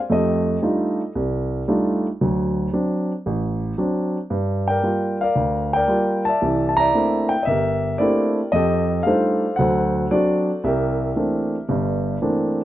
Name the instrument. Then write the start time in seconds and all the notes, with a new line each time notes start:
grand piano
0.10 F2 A3 G4 A4 D#5
0.62 G3 A3 D4 D#4 F4
1.15 C2
1.68 G3 A3 D4 D#4 F4
2.21 D2 F#3
2.73 F#3 C4 D4
3.26 A1
3.78 F#3 C4 D4
4.30 G2
4.68 A#4 D5 G5
4.83 G3 A#3 F4
5.21 A#4 D5 F5
5.36 D2
5.73 A#4 D5 G5
5.88 G3 A#3 F4
6.25 D5 E5 A5
6.42 C2 E3
6.69 A5
6.77 D5 E5 A#5
6.94 A3 A#3 C4 D4 E4
7.29 G5
7.43 D#5 E5
7.47 G1 G4 A#4
7.98 A3 A#3 C4 D4 E4 G4 D5
8.02 A#4
8.52 F2 G4 A4 D#5
9.03 G3 A3 D4 D#4 F4 A4 C5 F5
9.56 D2 F#3 F#5
9.61 A4 C5
10.11 F#3 C4 D4 F#4 A4 D5
10.64 C2 G4 A#4 E5
11.16 E3 A3 A#3 C4 D4
11.69 G1 G2
12.22 E3 A3 A#3 C4 D4